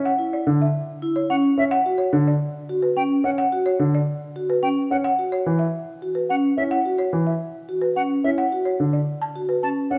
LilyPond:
<<
  \new Staff \with { instrumentName = "Flute" } { \time 3/4 \key g \lydian \tempo 4 = 108 r2 r16 fis''16 r16 e''16 | r2 r16 g''16 r16 fis''16 | r2 r16 g''16 r16 fis''16 | r2 r16 fis''16 r16 e''16 |
r2 r16 fis''16 r16 e''16 | r2 r16 a''16 r16 fis''16 | }
  \new Staff \with { instrumentName = "Marimba" } { \time 3/4 \key g \lydian fis''16 r16 d''16 r16 e''16 r8. cis''16 r8. | fis''16 r16 cis''16 r16 d''16 r8. b'16 r8. | fis''16 r16 cis''16 r16 d''16 r8. b'16 r8. | fis''16 r16 cis''16 r16 e''16 r8. b'16 r8. |
fis''16 r16 cis''16 r16 e''16 r8. b'16 r8. | fis''16 r16 cis''16 r16 d''16 r16 a''16 r16 b'16 r8. | }
  \new Staff \with { instrumentName = "Vibraphone" } { \time 3/4 \key g \lydian r16 e'16 r4 r16 e'16 r16 cis'16 r8 | r16 fis'16 r4 r16 fis'16 r16 cis'16 r8 | r16 fis'16 r4 r16 fis'16 r16 cis'16 r8 | r16 fis'16 r4 r16 fis'16 r16 cis'16 r16 e'16 |
r16 fis'16 r4 r16 fis'16 r16 cis'16 r16 e'16 | r16 fis'16 r4 r16 fis'16 r16 cis'16 r16 d'16 | }
  \new Staff \with { instrumentName = "Grand piano" } { \clef bass \time 3/4 \key g \lydian r8. d16 r4. r16 cis'16 | r8. d16 r4. r16 cis'16 | r8. d16 r4. r16 cis'16 | r8. e16 r4. r16 cis'16 |
r8. e16 r4. r16 cis'16 | r8. d16 r4. r16 cis'16 | }
>>